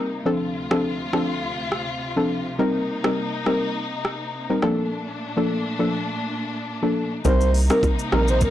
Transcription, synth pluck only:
0.25 0.67 F3 medium
0.25 0.67 C4 medium
0.25 0.67 D4 medium
0.25 0.67 A4 loud
0.71 0.92 F3 medium
0.71 0.92 C4 medium
0.71 0.92 D4 medium
0.71 0.92 A4 medium
1.13 1.36 F3 medium
1.13 1.36 C4 medium
1.13 1.36 D4 medium
1.13 1.36 A4 medium
2.16 2.38 F3 medium
2.16 2.38 C4 medium
2.16 2.38 D4 medium
2.16 2.38 A4 medium
2.59 3.00 G3 medium
2.59 3.00 C4 medium
2.59 3.00 D#4 medium
2.59 3.01 A#4 loud
3.04 3.25 G3 medium
3.04 3.25 C4 medium
3.04 3.25 D#4 medium
3.04 3.25 A#4 medium
3.46 3.69 G3 medium
3.46 3.69 C4 medium
3.46 3.69 D#4 medium
3.46 3.69 A#4 medium
4.50 4.71 G3 medium
4.50 4.71 C4 medium
4.50 4.71 D#4 medium
4.50 4.71 A#4 medium
4.63 4.90 F3 loud
4.63 4.90 A#3 medium
4.63 4.90 D4 medium
4.63 4.90 A4 loud
5.37 5.58 F3 medium
5.37 5.58 A#3 medium
5.37 5.58 D4 medium
5.37 5.58 A4 medium
5.79 6.02 F3 medium
5.79 6.02 A#3 medium
5.79 6.02 D4 medium
5.79 6.02 A4 medium
6.82 7.04 F3 medium
6.82 7.04 A#3 medium
6.82 7.04 D4 medium
6.82 7.04 A4 medium
7.25 7.66 G3 medium
7.25 7.66 C4 medium
7.25 7.66 D#4 medium
7.25 7.67 A#4 loud
7.70 7.91 G3 medium
7.70 7.91 C4 medium
7.70 7.91 D#4 medium
7.70 7.92 A#4 medium
8.12 8.35 G3 medium
8.12 8.35 C4 medium
8.12 8.35 D#4 medium
8.12 8.35 A#4 medium

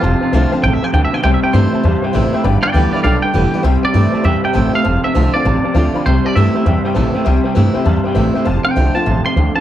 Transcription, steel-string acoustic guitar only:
0.04 0.62 F2 loud
0.33 0.52 F3 medium
0.33 0.52 A3 medium
0.33 0.52 C4 loud
0.33 0.51 F4 loud
0.52 0.64 C4 medium
0.52 0.63 F4 medium
0.64 0.93 A2 medium
0.94 1.23 B2 medium
1.23 1.82 C3 loud
1.53 1.72 E3 medium
1.53 1.72 G3 loud
1.53 1.72 C4 loud
1.53 1.71 E4 loud
1.72 1.84 C4 medium
1.72 1.83 E4 medium
1.83 2.42 G2 medium
2.13 2.32 E3 medium
2.13 2.32 G3 medium
2.13 2.33 C4 medium
2.13 2.32 E4 medium
2.33 2.44 C4 medium
2.33 2.43 E4 medium
2.44 3.02 G2 loud
2.74 2.93 D3 medium
2.74 2.93 G3 medium
2.74 2.93 B3 medium
2.74 2.92 G4 loud
2.93 3.05 B3 soft
2.93 3.04 G4 medium
3.04 3.32 D3 loud
3.34 3.53 D3 medium
3.34 3.53 G3 medium
3.34 3.53 B3 medium
3.34 3.53 G4 medium
3.54 3.65 B3 medium
3.54 3.64 G4 medium
3.64 4.23 C3 loud
3.94 4.13 E3 medium
3.94 4.13 G3 loud
3.94 4.13 C4 medium
3.94 4.12 E4 medium
4.13 4.24 C4 soft
4.13 4.24 E4 medium
4.24 4.83 G2 medium
4.53 4.73 E3 medium
4.53 4.73 G3 medium
4.53 4.73 C4 medium
4.53 4.72 E4 medium
4.73 4.85 C4 medium
4.73 4.84 E4 medium
4.85 5.43 F2 loud
5.15 5.33 F3 medium
5.15 5.34 A3 medium
5.15 5.34 C4 loud
5.15 5.33 F4 loud
5.34 5.46 C4 soft
5.34 5.45 F4 medium
5.45 6.03 C3 medium
5.75 5.94 F3 medium
5.75 5.94 A3 medium
5.75 5.94 C4 medium
5.75 5.93 F4 medium
5.94 6.06 C4 medium
5.94 6.05 F4 medium
6.06 6.64 C3 loud
6.36 6.54 E3 medium
6.36 6.55 G3 loud
6.36 6.55 C4 loud
6.36 6.54 E4 medium
6.55 6.66 C4 medium
6.55 6.65 E4 medium
6.66 7.24 G2 medium
6.95 7.14 E3 medium
6.95 7.14 G3 medium
6.95 7.14 C4 medium
6.95 7.13 E4 medium
7.14 7.26 C4 soft
7.14 7.25 E4 medium
7.26 7.84 C3 loud
7.55 7.74 E3 medium
7.55 7.75 G3 medium
7.55 7.74 C4 medium
7.55 7.73 E4 medium
7.74 7.86 C4 medium
7.74 7.85 E4 medium
7.86 8.44 G2 medium
8.15 8.34 E3 medium
8.15 8.35 G3 medium
8.15 8.35 C4 medium
8.15 8.34 E4 medium
8.35 8.47 C4 medium
8.35 8.46 E4 medium
8.45 9.04 F2 medium
8.76 8.95 F3 medium
8.76 8.95 A3 medium
8.76 8.95 C4 loud
8.76 8.94 F4 medium
8.95 9.07 C4 medium
8.95 9.06 F4 medium
9.06 9.36 E2 medium
9.37 9.60 F2 medium

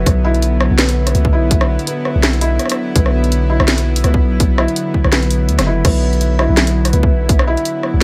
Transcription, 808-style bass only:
0.06 0.69 B1 loud
0.71 1.14 B1 medium
1.15 1.34 C#2 loud
1.33 1.78 B1 medium
2.15 2.58 B1 medium
2.96 3.59 B1 loud
3.60 4.03 B1 medium
4.04 4.24 C#2 loud
4.22 4.67 B1 medium
5.04 5.50 B1 medium
5.49 5.60 D2 medium
5.59 5.84 F#1 medium
5.85 6.48 B1 loud
6.49 6.92 B1 medium
6.93 7.13 C#2 loud
7.11 7.56 B1 medium
7.94 8.03 B1 medium

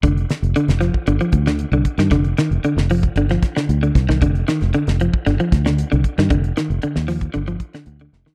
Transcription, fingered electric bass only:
0.03 0.24 F1 medium
0.42 0.53 F1 medium
0.68 0.89 F1 medium
1.07 1.18 G1 medium
1.32 1.64 D2 medium
1.72 1.82 C2 medium
1.98 2.09 G2 medium
2.11 2.32 F1 medium
2.51 2.61 F1 medium
2.63 muted fingered electric bass stroke soft
2.76 3.07 F1 medium
3.16 3.36 G1 medium
3.69 3.89 D2 medium
3.95 4.23 C2 medium
4.22 4.42 F1 loud
4.62 4.72 F1 medium
4.87 5.08 F1 medium
5.27 5.37 G1 medium
5.52 5.83 D2 medium
5.93 6.02 C2 medium
6.18 6.28 G2 medium
6.31 6.51 F1 medium
6.70 6.80 F1 medium
6.97 7.27 D#2 medium
7.35 7.56 G1 medium
7.87 8.07 D2 medium
8.13 8.24 F1 loud

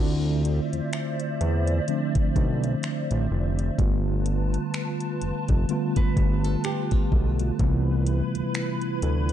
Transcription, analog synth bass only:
0.00 0.60 D2 loud
0.73 0.81 E2 soft
1.41 1.80 E2 loud
2.36 2.75 B1 medium
3.11 3.28 A1 medium
3.31 3.71 F1 loud
3.79 4.58 G1 loud
5.22 5.33 F1 soft
5.49 5.66 F1 medium
5.97 6.05 G1 soft
6.17 6.56 G1 medium
7.12 7.52 B1 medium
7.60 8.22 C2 loud
8.35 8.43 D2 soft
9.03 9.33 D2 medium

